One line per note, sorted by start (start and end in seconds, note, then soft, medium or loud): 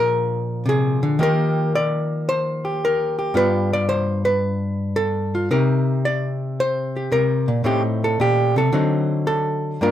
0.00 1.16 A#2 medium
0.00 3.34 F3 soft
0.00 1.20 D4 soft
0.00 0.50 G#4 medium
0.00 1.19 A#4 loud
0.66 1.02 C3 medium
0.66 1.20 G#4 medium
1.03 1.19 D3 medium
1.19 3.32 D#3 medium
1.19 3.34 A#3 medium
1.19 1.75 G4 medium
1.19 2.28 A#4 loud
1.75 2.64 D5 loud
2.29 2.81 C5 loud
2.65 3.18 G4 soft
2.85 3.36 A#4 medium
3.19 3.73 G4 soft
3.34 5.49 G2 medium
3.34 5.47 B3 soft
3.34 5.33 F4 medium
3.34 3.88 B4 loud
3.73 4.43 D5 medium
3.89 4.25 C5 loud
4.25 4.95 B4 medium
4.96 5.49 A4 loud
5.35 5.48 F4 soft
5.51 7.10 C3 medium
5.51 7.63 D#4 soft
5.51 6.95 G4 soft
5.51 6.04 A#4 medium
6.05 6.58 D5 loud
6.60 7.12 C5 loud
6.96 7.64 G4 soft
7.12 7.48 C3 medium
7.12 7.65 A#4 loud
7.48 7.64 A#2 medium
7.64 8.18 A2 medium
7.64 8.70 A3 medium
7.64 8.71 C4 medium
7.64 8.71 D#4 medium
7.64 7.82 G4 medium
8.04 8.20 A4 medium
8.20 8.56 A#2 medium
8.20 8.57 G4 medium
8.56 8.72 C3 medium
8.56 9.26 A4 medium
8.72 9.78 D3 medium
8.72 9.78 F#3 medium
8.72 9.79 C4 medium
8.72 9.79 D#4 medium
9.27 9.80 A4 medium
9.81 9.91 G2 medium
9.81 9.91 A#3 medium
9.81 9.91 D4 soft
9.81 9.91 F4 soft
9.81 9.91 A#4 medium